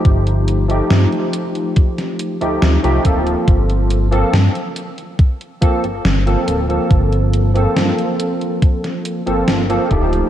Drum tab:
HH |xxxxxxxxxxxxxxxx|xxxxxxxxxxxxxxxx|xxxxxxxxxxxxxxxx|
SD |----o----o--o---|----o-------o---|----o----o--o---|
BD |o-------o-----o-|o-------o-o-----|o-------o-----o-|